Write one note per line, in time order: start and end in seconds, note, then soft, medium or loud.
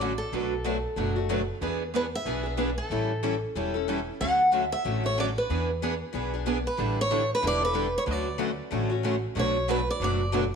0.00 0.20 A1 medium
0.00 0.11 D3 medium
0.00 0.11 F#3 medium
0.00 0.12 A3 medium
0.00 0.12 C#4 medium
0.00 0.12 F#4 medium
0.00 0.12 A4 medium
0.18 1.44 A4 medium
0.32 0.84 B1 medium
0.32 0.53 B2 medium
0.32 0.53 F#3 medium
0.32 0.53 A3 soft
0.32 0.53 D4 medium
0.32 0.53 F#4 medium
0.32 0.53 B4 medium
0.65 0.76 B2 medium
0.65 0.76 F#3 medium
0.65 0.76 A3 medium
0.65 0.76 D4 medium
0.65 0.76 F#4 medium
0.65 0.76 B4 medium
0.96 1.48 F#1 medium
0.96 1.15 B2 medium
0.96 1.16 F#3 medium
0.96 1.16 A3 medium
0.96 1.15 D4 medium
0.96 1.15 F#4 medium
0.96 1.18 B4 medium
1.16 1.28 A3 soft
1.16 1.29 D4 soft
1.16 1.29 F#4 soft
1.29 1.40 B2 medium
1.29 1.40 F#3 medium
1.29 1.40 A3 medium
1.29 1.40 D4 medium
1.29 1.41 F#4 medium
1.29 1.41 B4 medium
1.61 2.13 E2 medium
1.61 1.82 E3 medium
1.61 1.82 B3 medium
1.61 1.82 D4 medium
1.61 1.82 G#4 medium
1.61 1.82 B4 medium
1.95 2.05 E3 medium
1.95 2.05 B3 medium
1.95 2.06 D4 medium
1.95 2.06 G#4 medium
1.95 2.05 B4 medium
1.95 2.01 B4 medium
2.15 2.75 E5 medium
2.25 2.78 B1 medium
2.25 2.45 E3 medium
2.25 2.45 B3 medium
2.25 2.44 D4 medium
2.25 2.42 G#4 medium
2.25 2.46 B4 medium
2.43 2.57 B3 soft
2.43 2.58 D4 soft
2.43 2.57 G#4 soft
2.57 2.69 E3 medium
2.57 2.69 B3 medium
2.57 2.70 D4 medium
2.57 2.69 G#4 medium
2.57 2.69 B4 medium
2.78 3.38 A4 medium
2.90 3.42 A1 medium
2.90 3.11 E3 medium
2.90 3.11 G3 medium
2.90 3.11 C#4 medium
2.90 3.11 E4 medium
2.90 3.11 A4 medium
3.23 3.34 E3 medium
3.23 3.34 G3 medium
3.23 3.34 C#4 medium
3.23 3.34 E4 medium
3.23 3.34 A4 medium
3.55 4.07 E1 medium
3.55 3.74 E3 medium
3.55 3.74 G3 medium
3.55 3.74 C#4 medium
3.55 3.74 E4 medium
3.55 3.73 A4 medium
3.74 3.88 C#4 soft
3.74 3.87 E4 soft
3.74 3.87 A4 medium
3.88 3.99 E3 medium
3.88 3.99 G3 medium
3.88 3.99 C#4 medium
3.88 3.99 E4 medium
3.88 3.99 A4 medium
4.20 4.72 D2 medium
4.20 4.40 D3 medium
4.20 4.41 F#3 soft
4.20 4.41 A3 soft
4.20 4.41 C#4 medium
4.20 4.41 F#4 medium
4.20 4.41 A4 medium
4.20 4.68 F#5 medium
4.52 4.63 D3 medium
4.52 4.63 F#3 medium
4.52 4.63 A3 medium
4.52 4.63 C#4 medium
4.52 4.63 F#4 medium
4.52 4.64 A4 medium
4.72 5.02 E5 medium
4.85 5.37 A1 medium
4.85 5.03 D3 medium
4.85 5.03 F#3 medium
4.85 5.04 A3 medium
4.85 5.04 C#4 medium
4.85 5.02 F#4 medium
4.85 5.06 A4 medium
5.04 5.17 A3 soft
5.04 5.17 C#4 soft
5.04 5.17 F#4 medium
5.04 5.17 C#5 medium
5.18 5.28 D3 medium
5.18 5.28 F#3 medium
5.18 5.28 A3 medium
5.18 5.28 C#4 medium
5.18 5.28 F#4 medium
5.18 5.29 A4 medium
5.18 5.25 D5 medium
5.38 5.67 B4 medium
5.50 6.01 E2 medium
5.50 5.69 E3 soft
5.50 5.70 B3 medium
5.50 5.70 D4 medium
5.50 5.70 G#4 medium
5.50 5.70 B4 medium
5.82 5.93 E3 medium
5.82 5.93 B3 medium
5.82 5.93 D4 medium
5.82 5.93 G#4 medium
5.82 5.94 B4 medium
6.13 6.66 B1 medium
6.13 6.32 E3 medium
6.13 6.32 B3 medium
6.13 6.32 D4 medium
6.13 6.32 G#4 medium
6.13 6.35 B4 medium
6.33 6.45 B3 soft
6.33 6.45 D4 soft
6.33 6.46 G#4 soft
6.46 6.57 E3 medium
6.46 6.57 B3 medium
6.46 6.57 D4 medium
6.46 6.58 G#4 medium
6.46 6.58 B4 medium
6.67 6.99 B4 medium
6.77 7.30 A1 medium
6.77 6.98 D3 medium
6.77 6.98 G3 medium
6.77 6.98 D4 medium
6.77 6.98 E4 medium
6.77 6.98 A4 medium
7.01 7.29 C#5 medium
7.10 7.21 D3 medium
7.10 7.22 G3 medium
7.10 7.22 D4 medium
7.10 7.22 E4 medium
7.10 7.22 A4 medium
7.35 7.45 B4 medium
7.42 7.95 E1 medium
7.42 7.61 D3 medium
7.42 7.61 G3 medium
7.42 7.61 D4 medium
7.42 7.61 E4 medium
7.42 7.60 A4 medium
7.47 7.63 D5 medium
7.61 7.73 D4 soft
7.61 7.73 E4 soft
7.61 7.74 A4 soft
7.61 7.93 B4 medium
7.73 7.85 D3 medium
7.73 7.85 G3 medium
7.73 7.86 D4 medium
7.73 7.86 E4 medium
7.73 7.86 A4 medium
7.98 8.03 C#5 medium
8.06 8.59 D2 medium
8.06 8.27 D3 medium
8.06 8.27 F#3 medium
8.06 8.27 A3 medium
8.06 8.27 C#4 medium
8.06 8.27 F#4 medium
8.06 8.27 A4 medium
8.11 9.06 D5 medium
8.38 8.49 D3 medium
8.38 8.50 F#3 medium
8.38 8.50 A3 medium
8.38 8.50 C#4 medium
8.38 8.50 F#4 medium
8.38 8.50 A4 medium
8.71 9.23 A1 medium
8.71 8.89 D3 medium
8.71 8.90 F#3 medium
8.71 8.90 A3 medium
8.71 8.90 C#4 medium
8.71 8.88 F#4 medium
8.71 8.92 A4 medium
8.90 9.03 A3 soft
8.90 9.04 C#4 soft
8.90 9.03 F#4 medium
9.03 9.14 D3 medium
9.03 9.15 F#3 medium
9.03 9.15 A3 medium
9.03 9.15 C#4 medium
9.03 9.15 F#4 medium
9.03 9.15 A4 medium
9.35 9.87 B1 medium
9.35 9.55 B2 medium
9.35 9.55 F#3 medium
9.35 9.56 A3 medium
9.35 9.56 D4 medium
9.35 9.56 F#4 medium
9.35 9.56 B4 medium
9.39 9.68 C#5 medium
9.68 9.79 B2 medium
9.68 9.79 F#3 medium
9.68 9.79 A3 medium
9.68 9.79 D4 medium
9.68 9.79 F#4 medium
9.68 9.79 B4 medium
9.68 9.89 B4 medium
9.90 10.01 D5 medium
10.00 10.51 F#1 medium
10.00 10.20 B2 medium
10.00 10.21 F#3 medium
10.00 10.21 A3 medium
10.00 10.21 D4 medium
10.00 10.21 F#4 medium
10.00 10.21 B4 medium
10.04 10.32 D5 medium
10.32 10.43 B2 medium
10.32 10.43 F#3 medium
10.32 10.43 A3 medium
10.32 10.43 D4 medium
10.32 10.43 F#4 medium
10.32 10.44 B4 medium